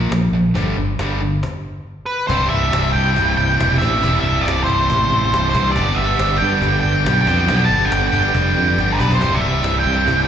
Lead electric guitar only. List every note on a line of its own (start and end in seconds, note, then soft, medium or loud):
2.06 2.27 B4 medium
2.27 2.48 C5 medium
2.48 2.92 E5 medium
2.93 3.34 G5 medium
3.37 3.78 G5 loud
3.78 4.19 E5 loud
4.20 4.45 E5 medium
4.41 4.63 D5 loud
4.64 5.48 C5 medium
5.50 5.71 C5 medium
5.72 5.96 D5 loud
5.95 6.37 E5 loud
6.38 6.79 G5 loud
6.80 7.20 G5 loud
7.21 7.64 G5 loud
7.65 7.90 A5 loud
7.85 8.06 G5 loud
8.08 8.94 G5 loud
8.92 8.98 A4 medium
8.92 9.14 B4 medium
9.14 9.40 C5 medium
9.35 9.79 E5 medium
9.80 10.24 G5 loud